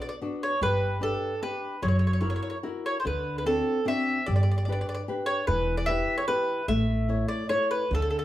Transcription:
0.00 0.13 B3 soft
0.00 0.12 D4 soft
0.00 0.13 F#4 soft
0.00 0.08 D5 medium
0.09 0.15 D5 medium
0.21 0.54 B3 soft
0.21 0.54 D4 soft
0.21 0.54 F#4 soft
0.43 0.61 C#5 medium
0.61 1.14 G1 medium
0.61 1.00 G3 medium
0.61 0.99 B4 medium
1.01 1.33 D4 soft
1.01 1.34 G4 soft
1.01 1.40 A4 medium
1.01 1.34 B4 soft
1.42 1.75 D4 soft
1.42 1.75 G4 soft
1.42 1.80 B4 medium
1.42 1.75 B4 soft
1.82 2.36 F#1 medium
1.82 2.22 F#3 medium
1.82 1.87 C#5 medium
1.88 1.96 C#5 soft
1.99 2.05 C#5 soft
2.07 2.12 C#5 soft
2.13 2.19 C#5 soft
2.21 2.55 E4 soft
2.21 2.55 F#4 soft
2.21 2.55 A#4 soft
2.21 2.27 C#5 soft
2.30 2.35 C#5 soft
2.36 2.41 C#5 soft
2.43 2.49 C#5 soft
2.50 2.57 C#5 soft
2.63 2.97 E4 soft
2.63 2.97 F#4 soft
2.63 2.97 A#4 soft
2.86 2.99 C#5 medium
3.00 3.06 C5 soft
3.05 3.59 D2 medium
3.05 3.45 D3 soft
3.05 3.37 B4 medium
3.38 3.46 B4 soft
3.46 3.79 C4 soft
3.46 3.79 D4 soft
3.46 3.79 F#4 soft
3.46 3.84 A4 medium
3.85 4.18 C4 soft
3.85 4.19 D4 soft
3.85 4.19 F#4 soft
3.85 4.25 E5 medium
4.26 4.80 G1 medium
4.26 4.67 G3 soft
4.26 4.34 D5 medium
4.36 4.42 D5 soft
4.43 4.50 D5 medium
4.51 4.57 D5 soft
4.58 4.64 D5 soft
4.65 5.00 D4 soft
4.65 5.01 G4 soft
4.65 4.71 D5 soft
4.69 5.01 B4 soft
4.69 4.80 D5 medium
4.81 4.88 D5 soft
4.89 4.93 D5 medium
4.95 5.02 D5 medium
5.08 5.40 D4 soft
5.08 5.40 G4 soft
5.08 5.41 B4 soft
5.26 5.46 C#5 medium
5.47 6.01 E1 medium
5.47 5.87 E3 soft
5.47 5.76 B4 medium
5.77 5.88 D5 medium
5.86 6.21 E4 soft
5.86 6.21 G4 soft
5.86 6.21 B4 soft
5.86 6.15 E5 medium
6.18 6.27 C#5 medium
6.28 6.61 E4 soft
6.28 6.61 G4 soft
6.28 6.68 B4 medium
6.28 6.61 B4 soft
6.68 7.22 A1 medium
6.68 7.08 A3 medium
6.68 7.26 E5 medium
7.09 7.42 E4 soft
7.09 7.43 A4 soft
7.09 7.43 C#5 soft
7.28 7.49 D5 medium
7.49 7.84 E4 soft
7.49 7.84 A4 soft
7.49 7.70 C#5 medium
7.49 7.84 C#5 soft
7.71 7.91 B4 medium
7.91 8.25 D2 medium
7.91 8.25 D3 medium
7.91 8.01 A4 medium
8.02 8.09 A4 soft
8.10 8.17 A4 soft
8.19 8.23 A4 medium

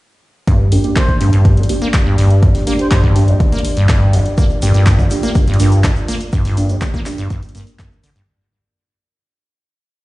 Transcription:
0.47 0.73 G2 medium
0.47 8.24 A#3 medium
0.47 8.24 D4 medium
0.47 4.34 G4 medium
0.47 8.24 D5 medium
0.47 kick loud
0.47 closed hi-hat medium
0.72 0.79 F2 loud
0.72 0.82 A#3 medium
0.72 0.82 D4 medium
0.72 0.82 G4 medium
0.72 open hi-hat loud
0.84 0.98 A#3 medium
0.84 0.98 D4 medium
0.84 0.98 G4 medium
0.84 closed hi-hat soft
0.96 1.03 A#3 loud
0.96 1.14 C5 medium
0.96 kick loud
0.96 clap loud
0.96 closed hi-hat medium
1.09 kick medium
1.21 1.31 G2 medium
1.21 1.67 A#3 medium
1.21 1.67 D4 medium
1.21 1.67 G4 medium
1.21 open hi-hat loud
1.33 1.59 G2 medium
1.33 closed hi-hat medium
1.45 kick loud
1.45 closed hi-hat medium
1.57 1.64 F2 loud
1.57 closed hi-hat soft
1.63 closed hi-hat medium
1.69 1.92 A#3 loud
1.69 1.92 D4 medium
1.69 1.92 G4 loud
1.69 open hi-hat loud
1.82 1.88 A#3 loud
1.82 closed hi-hat soft
1.94 kick loud
1.94 clap loud
1.94 closed hi-hat medium
2.06 2.16 G2 medium
2.18 2.44 G2 medium
2.18 open hi-hat loud
2.30 closed hi-hat medium
2.43 2.49 F2 loud
2.43 kick loud
2.43 closed hi-hat medium
2.55 open hi-hat medium
2.67 2.74 A#3 loud
2.67 2.77 A#3 loud
2.67 2.77 D4 medium
2.67 2.77 G4 loud
2.67 open hi-hat loud
2.79 3.01 A#3 medium
2.79 3.01 D4 medium
2.79 3.01 G4 loud
2.79 2.87 C5 medium
2.79 closed hi-hat soft
2.91 3.02 G2 medium
2.91 2.99 C5 medium
2.91 kick loud
2.91 clap loud
2.91 closed hi-hat medium
3.04 3.29 G2 medium
3.04 kick medium
3.16 3.38 A#3 medium
3.16 3.38 D4 medium
3.16 3.38 G4 loud
3.16 open hi-hat loud
3.28 3.35 F2 loud
3.28 closed hi-hat medium
3.40 kick loud
3.40 closed hi-hat medium
3.52 3.59 A#3 loud
3.52 closed hi-hat soft
3.59 closed hi-hat medium
3.65 open hi-hat loud
3.77 3.87 G2 medium
3.77 closed hi-hat medium
3.89 4.15 G2 medium
3.89 kick loud
3.89 clap loud
3.89 closed hi-hat medium
4.13 4.20 F2 loud
4.13 open hi-hat loud
4.26 closed hi-hat soft
4.38 4.45 A#3 loud
4.38 8.24 F4 medium
4.38 kick loud
4.38 closed hi-hat medium
4.38 shaker medium
4.50 shaker soft
4.62 4.72 G2 medium
4.62 4.73 A#3 medium
4.62 4.73 D4 medium
4.62 4.73 G4 medium
4.62 open hi-hat loud
4.62 shaker medium
4.74 5.00 G2 medium
4.74 4.88 A#3 medium
4.74 4.88 D4 medium
4.74 4.88 G4 medium
4.74 closed hi-hat soft
4.74 shaker soft
4.86 kick loud
4.86 clap loud
4.86 closed hi-hat medium
4.86 shaker medium
4.99 5.05 F2 loud
4.99 kick medium
4.99 shaker soft
5.11 5.57 A#3 medium
5.11 5.57 D4 medium
5.11 5.57 G4 medium
5.11 open hi-hat loud
5.11 shaker medium
5.23 5.30 A#3 loud
5.23 closed hi-hat soft
5.23 shaker soft
5.35 kick loud
5.35 closed hi-hat medium
5.35 shaker soft
5.47 5.58 G2 medium
5.47 closed hi-hat soft
5.47 shaker soft
5.54 closed hi-hat medium
5.60 5.86 G2 medium
5.60 5.82 A#3 loud
5.60 5.82 D4 medium
5.60 5.82 G4 loud
5.60 open hi-hat loud
5.60 shaker medium
5.72 closed hi-hat soft
5.72 shaker soft
5.84 5.91 F2 loud
5.84 kick loud
5.84 clap loud
5.84 closed hi-hat medium
5.84 shaker medium
5.96 shaker soft
6.08 6.15 A#3 loud
6.08 open hi-hat loud
6.08 shaker medium
6.21 closed hi-hat soft
6.21 shaker soft
6.33 6.43 G2 medium
6.33 kick loud
6.33 closed hi-hat medium
6.33 shaker medium
6.45 6.71 G2 medium
6.45 open hi-hat medium
6.45 shaker soft
6.57 6.68 A#3 loud
6.57 6.68 D4 medium
6.57 6.68 G4 loud
6.57 open hi-hat loud
6.57 shaker medium
6.69 6.76 F2 loud
6.69 6.92 A#3 medium
6.69 6.92 D4 medium
6.69 6.92 G4 loud
6.69 closed hi-hat soft
6.69 shaker soft
6.81 kick loud
6.81 clap loud
6.81 closed hi-hat medium
6.81 shaker medium
6.94 7.01 A#3 loud
6.94 kick medium
6.94 shaker soft
7.06 7.28 A#3 medium
7.06 7.28 D4 medium
7.06 7.28 G4 loud
7.06 clap medium
7.06 open hi-hat loud
7.06 shaker loud
7.18 7.28 G2 medium
7.18 closed hi-hat soft
7.18 shaker soft
7.30 7.41 G2 medium
7.30 kick loud
7.30 closed hi-hat medium
7.30 shaker soft
7.43 closed hi-hat soft
7.43 shaker soft
7.49 closed hi-hat medium
7.55 7.62 G2 loud
7.55 7.77 A#3 medium
7.55 7.77 D4 medium
7.55 7.77 A#4 medium
7.55 open hi-hat loud
7.55 shaker medium
7.67 closed hi-hat soft
7.67 shaker soft
7.79 7.86 G2 loud
7.79 kick loud
7.79 clap loud
7.79 closed hi-hat medium
7.79 shaker medium
7.92 shaker soft
8.04 8.10 D3 medium
8.04 open hi-hat loud
8.04 shaker medium
8.16 8.23 G2 medium
8.16 closed hi-hat soft
8.16 shaker soft

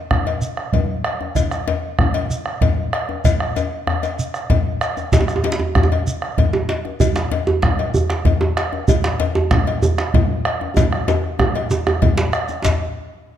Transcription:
0.11 bombo rim loud
0.11 bombo low medium
0.11 djembe bass medium
0.26 cowbell medium
0.26 djembe tone medium
0.41 shekere medium
0.57 bombo rim medium
0.57 djembe slap soft
0.73 bombo low medium
0.73 cowbell soft
0.73 djembe tone medium
0.73 djembe bass medium
1.04 bombo rim loud
1.04 cowbell soft
1.04 djembe slap soft
1.20 bombo rim soft
1.20 djembe tone medium
1.35 bombo rim soft
1.35 bombo low medium
1.35 cowbell medium
1.35 djembe bass medium
1.35 shekere medium
1.51 bombo rim medium
1.51 djembe slap soft
1.51 shekere soft
1.68 cowbell medium
1.68 djembe slap medium
1.68 djembe tone medium
1.99 bombo rim loud
1.99 bombo low loud
1.99 djembe bass medium
2.14 cowbell medium
2.14 djembe tone medium
2.30 shekere medium
2.46 bombo rim medium
2.46 djembe slap soft
2.61 bombo low loud
2.61 cowbell medium
2.61 djembe slap medium
2.61 djembe tone medium
2.61 djembe bass medium
2.93 bombo rim loud
2.93 cowbell medium
2.93 djembe slap soft
3.09 bombo rim soft
3.09 djembe tone medium
3.24 bombo low loud
3.24 cowbell medium
3.24 djembe slap soft
3.24 djembe bass medium
3.24 shekere medium
3.40 bombo rim medium
3.56 bombo rim soft
3.56 cowbell medium
3.56 djembe tone medium
3.56 shekere soft
3.87 bombo rim loud
3.87 djembe bass medium
4.03 cowbell medium
4.03 djembe slap soft
4.03 djembe tone medium
4.03 shekere soft
4.19 djembe slap soft
4.19 shekere medium
4.34 bombo rim medium
4.34 shekere soft
4.50 bombo rim soft
4.50 bombo low loud
4.50 cowbell medium
4.50 djembe slap medium
4.50 djembe tone medium
4.50 djembe bass medium
4.81 bombo rim loud
4.81 cowbell soft
4.81 shekere soft
4.97 djembe slap soft
4.97 djembe tone medium
4.97 shekere soft
5.12 bombo rim soft
5.12 bombo low loud
5.12 cowbell medium
5.12 djembe slap loud
5.12 djembe bass medium
5.12 shekere medium
5.21 djembe tone medium
5.28 bombo rim medium
5.28 shekere soft
5.36 djembe tone medium
5.44 cowbell medium
5.44 djembe slap medium
5.44 djembe tone medium
5.52 djembe slap loud
5.59 djembe tone medium
5.75 bombo rim loud
5.75 bombo low loud
5.75 djembe tone medium
5.75 djembe bass medium
5.83 djembe tone medium
5.91 cowbell soft
5.91 djembe tone medium
6.07 shekere medium
6.22 bombo rim medium
6.22 djembe slap soft
6.38 bombo low medium
6.38 cowbell medium
6.38 djembe slap medium
6.38 djembe tone medium
6.38 djembe bass medium
6.53 djembe tone loud
6.69 cowbell soft
6.69 djembe slap medium
6.69 djembe slap soft
6.85 bombo rim soft
6.85 djembe tone medium
7.00 bombo rim soft
7.00 bombo low loud
7.00 cowbell medium
7.00 djembe bass medium
7.00 shekere medium
7.16 bombo rim medium
7.16 djembe slap medium
7.16 djembe slap soft
7.16 shekere soft
7.32 cowbell medium
7.32 djembe slap medium
7.32 djembe tone medium
7.47 djembe tone loud
7.62 bombo rim loud
7.62 bombo low loud
7.62 djembe slap medium
7.62 djembe bass medium
7.79 cowbell medium
7.79 djembe tone medium
7.94 djembe bass medium
7.94 shekere medium
8.10 bombo rim medium
8.10 djembe slap soft
8.10 djembe slap medium
8.25 bombo low loud
8.25 cowbell soft
8.25 djembe slap medium
8.25 djembe tone medium
8.25 djembe bass medium
8.41 djembe tone loud
8.57 bombo rim loud
8.57 cowbell medium
8.57 djembe slap soft
8.57 djembe slap medium
8.73 bombo rim soft
8.73 djembe tone medium
8.88 bombo rim soft
8.88 bombo low loud
8.88 cowbell medium
8.88 djembe bass medium
8.88 shekere medium
9.04 bombo rim medium
9.04 djembe slap soft
9.04 djembe slap medium
9.04 shekere soft
9.20 cowbell medium
9.20 djembe slap medium
9.20 djembe tone medium
9.35 djembe tone loud
9.51 bombo rim loud
9.51 bombo low loud
9.51 djembe slap medium
9.51 djembe bass medium
9.67 cowbell medium
9.67 djembe tone medium
9.82 djembe bass medium
9.82 shekere medium
9.98 bombo rim medium
9.98 djembe slap medium
9.98 djembe slap soft
10.14 bombo low loud
10.14 cowbell medium
10.14 djembe slap medium
10.14 djembe tone medium
10.14 djembe bass medium
10.45 bombo rim loud
10.45 cowbell medium
10.45 djembe slap soft
10.61 bombo rim soft
10.61 djembe tone medium
10.77 bombo low loud
10.77 cowbell medium
10.77 djembe tone loud
10.77 djembe bass medium
10.77 shekere medium
10.93 bombo rim medium
11.08 cowbell medium
11.08 djembe slap medium
11.08 djembe tone loud
11.08 djembe tone medium
11.08 shekere soft
11.24 bombo rim soft
11.39 bombo rim loud
11.39 bombo low loud
11.39 djembe tone loud
11.39 djembe bass medium
11.55 cowbell medium
11.55 djembe slap soft
11.55 djembe tone medium
11.70 bombo rim soft
11.70 djembe slap soft
11.70 djembe tone loud
11.70 shekere medium
11.87 bombo rim medium
11.87 djembe tone loud
12.02 bombo low loud
12.02 cowbell medium
12.02 djembe slap medium
12.02 djembe tone medium
12.02 djembe bass medium
12.17 bombo rim soft
12.17 djembe slap soft
12.17 djembe slap loud
12.33 bombo rim loud
12.33 cowbell medium
12.33 shekere soft
12.48 bombo rim soft
12.48 djembe slap soft
12.48 djembe tone medium
12.48 shekere soft
12.64 bombo low medium
12.64 cowbell medium
12.64 djembe slap loud
12.64 djembe bass medium
12.64 shekere medium

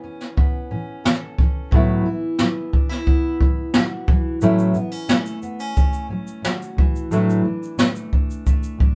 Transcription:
0.00 1.71 E3 medium
0.00 0.36 B3 medium
0.00 0.70 C#4 soft
0.20 snare soft
0.37 2.38 B3 medium
0.37 kick medium
0.71 0.98 A2 soft
0.71 1.00 E3 soft
0.71 1.38 C#4 medium
1.04 1.32 A2 medium
1.04 1.79 A4 medium
1.04 snare loud
1.08 1.34 E3 medium
1.39 1.66 A2 soft
1.39 1.79 C#4 soft
1.39 kick medium
1.43 1.68 E3 soft
1.71 2.05 A2 medium
1.71 4.07 E3 medium
1.71 2.07 F#3 medium
1.71 2.07 A3 medium
1.71 2.08 B3 medium
1.71 kick medium
1.76 2.08 E4 medium
2.06 2.33 A2 soft
2.06 2.72 E4 medium
2.39 2.67 A2 medium
2.39 3.05 B3 medium
2.39 snare medium
2.43 2.69 F#3 medium
2.73 2.89 D4 soft
2.73 kick medium
2.89 3.39 E4 soft
2.89 snare soft
3.06 4.15 B3 medium
3.06 kick medium
3.40 3.68 A2 soft
3.40 4.75 E4 soft
3.40 kick medium
3.45 3.70 F#3 soft
3.74 4.02 A2 medium
3.74 4.44 F#4 medium
3.74 snare loud
3.79 4.04 F#3 medium
4.08 4.36 A2 soft
4.08 4.41 E3 medium
4.08 kick loud
4.12 4.37 F#3 soft
4.41 4.75 A2 medium
4.41 6.78 E3 medium
4.41 4.76 F#3 medium
4.41 4.76 A3 medium
4.41 4.77 C#4 medium
4.41 4.77 E4 medium
4.41 shaker medium
4.59 shaker soft
4.74 5.03 A2 soft
4.74 4.92 B3 medium
4.74 shaker soft
4.92 5.42 C#4 soft
4.92 shaker soft
5.08 5.36 A2 medium
5.08 5.38 F#3 medium
5.08 5.76 A3 medium
5.08 snare loud
5.08 shaker medium
5.26 shaker soft
5.43 5.60 B3 medium
5.43 shaker soft
5.60 6.09 C#4 soft
5.60 shaker soft
5.76 7.79 A3 medium
5.76 kick medium
5.76 shaker medium
5.93 shaker soft
6.09 6.37 A2 soft
6.09 6.39 F#3 medium
6.09 6.85 C#4 medium
6.27 shaker soft
6.42 6.70 A2 medium
6.42 6.72 F#3 medium
6.42 7.15 F#4 medium
6.42 snare loud
6.42 shaker medium
6.62 shaker soft
6.77 7.05 A2 soft
6.77 7.12 E3 medium
6.77 7.06 F#3 soft
6.77 kick medium
6.96 shaker soft
7.11 7.44 A2 medium
7.11 8.95 E3 medium
7.11 7.46 F#3 medium
7.11 7.46 A3 medium
7.11 7.46 D4 medium
7.11 7.47 E4 medium
7.11 shaker medium
7.30 shaker soft
7.45 7.72 A2 soft
7.45 8.12 D4 medium
7.63 shaker soft
7.78 8.06 A2 medium
7.78 8.07 F#3 medium
7.78 8.47 A3 medium
7.78 snare loud
7.78 shaker medium
7.96 shaker soft
8.13 8.79 D4 medium
8.13 kick medium
8.30 shaker soft
8.47 8.95 A3 medium
8.47 kick medium
8.47 shaker medium
8.63 shaker soft
8.79 8.95 A2 soft
8.79 8.95 F#3 soft
8.79 8.95 D4 soft
8.79 kick medium

